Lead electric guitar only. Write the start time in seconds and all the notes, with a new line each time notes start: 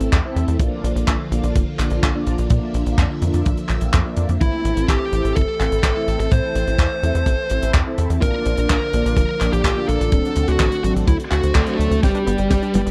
4.41 E4
4.89 G4
5.36 A4
5.84 A4
6.20 A4
6.32 C5
8.22 A#4
8.69 A#4
9.17 A#4
9.53 G4
9.89 A4
10.48 F#4
10.84 F#4
11.08 E4
11.32 F#4
11.55 A3 A4
12.03 G3 G4